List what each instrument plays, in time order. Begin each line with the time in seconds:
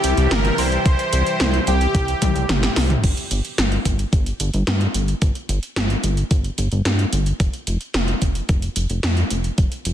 Already playing: analog synth pad C3 E3 G3 E4 G4, supersaw synth G4, synth bell G5
0.04 analog synth bass C2, closed hi-hat
0.17 analog synth bass C2, closed hi-hat
0.31 analog synth bass G1, supersaw synth A#4, synth bell A#5, snare, closed hi-hat
0.45 closed hi-hat
0.58 analog synth bass C2, supersaw synth C5, synth bell C6, open hi-hat
0.72 closed hi-hat
0.86 analog synth bass C2, kick, closed hi-hat
0.99 closed hi-hat
1.13 analog synth bass C2, closed hi-hat
1.26 closed hi-hat
1.40 analog synth bass C2, snare, closed hi-hat
1.54 closed hi-hat
1.67 analog synth bass C2, supersaw synth G4, synth bell G5, closed hi-hat
1.81 closed hi-hat
1.95 analog synth bass C2, kick, closed hi-hat
2.08 closed hi-hat
2.22 analog synth bass C2, kick, closed hi-hat, high tom
2.35 analog synth bass C2, closed hi-hat
2.49 analog synth bass G1, snare, closed hi-hat, mid tom
2.63 snare, closed hi-hat
2.76 analog synth bass C2, snare, open hi-hat
2.90 closed hi-hat, mid tom
3.04 analog synth bass G1, kick, closed hi-hat, crash
3.17 closed hi-hat
3.31 analog synth bass G1, closed hi-hat
3.45 closed hi-hat
3.58 analog synth bass G1, snare, closed hi-hat
3.72 closed hi-hat
3.85 analog synth bass G1, kick, closed hi-hat
3.99 closed hi-hat
4.13 analog synth bass G1, kick, closed hi-hat
4.26 closed hi-hat
4.40 analog synth bass G1, closed hi-hat
4.54 analog synth bass G1, closed hi-hat
4.67 analog synth bass G2, snare, closed hi-hat
4.81 closed hi-hat
4.94 analog synth bass G1, closed hi-hat
5.08 closed hi-hat
5.22 analog synth bass G1, kick, closed hi-hat
5.35 closed hi-hat
5.49 analog synth bass G1, closed hi-hat
5.63 closed hi-hat
5.76 analog synth bass G1, snare, closed hi-hat
5.90 closed hi-hat
6.04 analog synth bass G1, closed hi-hat
6.17 closed hi-hat
6.31 analog synth bass G1, kick, closed hi-hat
6.44 closed hi-hat
6.58 analog synth bass G1, closed hi-hat
6.72 analog synth bass G1, closed hi-hat
6.85 analog synth bass G2, snare, closed hi-hat
6.99 closed hi-hat
7.13 analog synth bass G1, closed hi-hat
7.26 closed hi-hat
7.40 analog synth bass F1, kick, closed hi-hat
7.53 closed hi-hat
7.67 analog synth bass F1, closed hi-hat
7.81 closed hi-hat
7.94 analog synth bass F1, snare, closed hi-hat
8.08 closed hi-hat
8.22 analog synth bass F1, kick, closed hi-hat
8.35 closed hi-hat
8.49 analog synth bass F1, kick, closed hi-hat
8.62 closed hi-hat
8.76 analog synth bass F1, closed hi-hat
8.90 analog synth bass F1, closed hi-hat
9.03 analog synth bass F2, snare, closed hi-hat
9.17 closed hi-hat
9.30 analog synth bass F1, closed hi-hat
9.44 closed hi-hat
9.58 analog synth bass F1, kick, closed hi-hat
9.72 closed hi-hat
9.85 analog synth bass F1, closed hi-hat